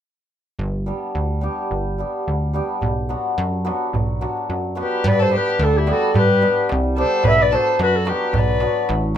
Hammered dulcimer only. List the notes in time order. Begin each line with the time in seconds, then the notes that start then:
0.86 G3 B3 D4 G4
1.41 G3 B3 D4 G4
1.98 G3 B3 D4 G4
2.53 G3 B3 D4 G4
3.09 F#3 B3 D4 F#4
3.65 F#3 B3 D4 F#4
4.21 F#3 B3 D4 F#4
4.75 F#3 B3 D4 F#4
5.29 G3 B3 D4 G4
5.87 G3 B3 D4 G4
6.41 G3 B3 D4 G4
6.97 G3 B3 D4 G4
7.52 F#3 B3 D4 F#4
8.05 F#3 B3 D4 F#4
8.61 F#3 B3 D4 F#4
9.14 F#3